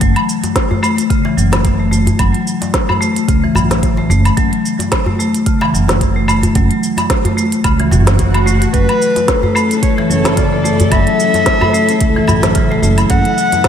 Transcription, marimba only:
0.01 0.10 F#3 medium
0.71 0.81 A3 medium
0.83 0.97 A3 loud
1.10 1.19 C#3 medium
1.25 1.37 E3 loud
1.37 1.78 F#3 medium
1.80 1.91 A3 medium
1.92 2.06 A3 medium
2.19 2.28 F#3 medium
2.89 3.00 A3 medium
3.01 3.15 A3 loud
3.28 3.37 C#3 medium
3.44 3.55 E3 loud
3.56 3.97 F#3 medium
3.98 4.09 A3 medium
4.10 4.25 A3 loud
4.37 4.46 F#3 loud
5.07 5.18 A3 medium
5.19 5.34 A3 loud
5.46 5.55 C#3 medium
5.62 5.73 E3 loud
5.74 6.15 F#3 medium
6.16 6.27 A3 medium
6.28 6.43 A3 loud
6.56 6.64 F#3 medium
7.25 7.36 A3 medium
7.37 7.52 A3 medium
7.64 7.73 C#3 medium
7.79 7.91 E3 loud
7.92 8.33 F#3 medium
8.34 8.45 A3 medium
8.46 8.61 A3 medium
8.73 8.82 F#3 medium
9.43 9.54 A3 medium
9.55 9.70 A3 loud
9.98 10.09 E3 loud
10.10 10.36 F#3 medium
10.37 10.46 C#3 medium
10.52 10.63 A3 medium
10.64 10.79 A3 medium
10.92 11.00 F#3 loud
11.61 11.72 A3 medium
11.73 11.88 A3 loud
12.16 12.28 E3 loud
12.28 12.54 F#3 medium
12.55 12.64 C#3 medium
12.71 12.82 A3 medium
12.83 12.97 A3 medium
13.10 13.19 F#3 medium

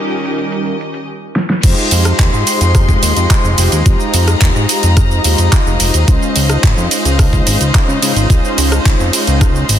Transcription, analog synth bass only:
1.64 1.74 F2 loud
1.92 2.13 F2 loud
2.19 2.30 D#2 loud
2.33 2.44 G#2 loud
2.61 2.98 F2 loud
3.03 3.13 D#2 medium
3.17 3.27 F2 medium
3.44 3.55 F1 medium
3.58 3.69 F1 loud
3.72 3.83 D#2 medium
3.86 3.97 F2 loud
4.14 4.35 F2 loud
4.41 4.52 D#2 loud
4.56 4.66 G#2 loud
4.83 5.20 F2 medium
5.25 5.36 D#2 medium
5.39 5.49 F2 medium
5.67 5.77 F1 medium
5.80 5.91 F1 loud
5.94 6.05 D#2 medium
6.08 6.19 C#2 loud
6.36 6.57 C#2 medium
6.63 6.74 G#1 loud
6.77 6.88 F2 loud
7.05 7.42 C#2 medium
7.47 7.58 G#1 medium
7.61 7.72 C#2 medium
7.88 7.99 C#3 medium
8.02 8.13 C#3 loud
8.16 8.27 G#1 medium
8.30 8.41 C#2 loud
8.58 8.79 C#2 medium
8.85 8.96 G#1 loud
9.00 9.10 F2 loud
9.28 9.64 C#2 loud
9.69 9.79 G#1 medium

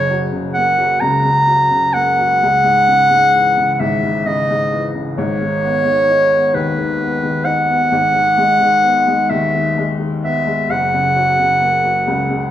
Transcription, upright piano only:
0.00 2.35 F#1 medium
0.00 2.35 F#2 medium
0.00 0.31 C#3 medium
0.10 0.77 F#3 medium
0.32 1.00 C#3 medium
0.56 1.92 A#3 medium
0.78 1.46 F#3 medium
1.02 2.36 C#2 medium
1.02 1.23 C#3 medium
1.25 1.69 C#3 soft
1.48 2.17 F#3 medium
1.71 2.38 C#3 soft
1.94 2.38 A#3 medium
2.18 2.40 F#3 medium
2.43 5.14 C#2 medium
2.64 3.09 G#2 medium
2.88 3.56 C#3 medium
3.11 3.79 G#2 soft
3.35 4.71 E3 medium
3.57 4.24 C#3 soft
3.80 5.13 G#1 medium
3.80 4.01 G#2 medium
4.03 4.48 G#2 soft
4.26 4.93 C#3 medium
4.50 5.16 G#2 medium
4.73 5.16 E3 medium
4.95 5.16 C#3 soft
5.17 7.88 G#1 medium
5.17 7.88 G#2 medium
5.41 5.83 D#3 medium
5.64 6.31 B3 medium
5.85 6.53 D#3 soft
6.10 7.44 D#4 medium
6.32 6.99 B3 medium
6.54 7.88 D#2 medium
6.54 6.77 D#3 medium
6.79 7.22 D#3 medium
7.01 7.67 B3 medium
7.23 7.90 D#3 medium
7.46 7.90 D#4 medium
7.69 7.91 B3 medium
7.92 10.66 G#1 medium
7.92 10.65 G#2 medium
8.14 8.59 D#3 medium
8.38 9.06 G#3 medium
8.61 9.29 D#3 medium
8.83 10.21 B3 medium
9.07 9.76 G#3 medium
9.30 10.65 D#2 medium
9.30 9.53 D#3 medium
9.54 9.98 D#3 soft
9.78 10.45 G#3 medium
10.00 10.67 D#3 medium
10.23 10.68 B3 medium
10.47 10.69 G#3 soft
10.70 12.51 F#1 medium
10.70 12.51 F#2 medium
10.94 11.38 C#3 medium
11.16 11.82 F#3 medium
11.40 12.06 C#3 soft
11.62 12.51 A#3 medium
11.84 12.51 F#3 soft
12.07 12.51 C#2 medium
12.07 12.29 C#3 medium
12.30 12.51 C#3 soft

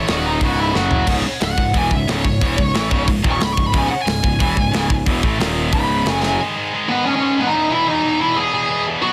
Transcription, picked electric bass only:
0.09 0.39 D#1 medium
0.41 0.72 C#1 medium
0.75 1.06 F#1 loud
1.07 1.23 C#1 medium
1.25 muted picked electric bass stroke soft
1.41 1.57 C#1 medium
1.58 1.73 C#1 medium
1.74 1.90 E1 medium
1.91 2.07 C#1 medium
2.08 2.23 C#1 medium
2.25 2.40 C#1 medium
2.41 2.57 E1 medium
2.58 2.73 C#1 medium
2.75 2.90 A1 medium
2.91 3.06 C#1 medium
3.07 3.23 C#1 medium
3.24 3.40 D#1 medium
3.41 3.56 C#1 medium
3.58 3.73 C#1 medium
3.74 3.89 C#1 loud
3.91 muted picked electric bass stroke soft
4.07 4.22 C#1 medium
4.24 4.39 C#1 medium
4.41 4.56 E1 medium
4.57 4.72 C#1 medium
4.74 4.89 C#1 loud
4.90 5.05 C#1 medium
5.06 5.22 E1 loud
5.23 5.39 A1 loud
5.40 5.71 D#1 medium
5.73 6.04 C#1 medium
6.06 6.37 F#1 medium

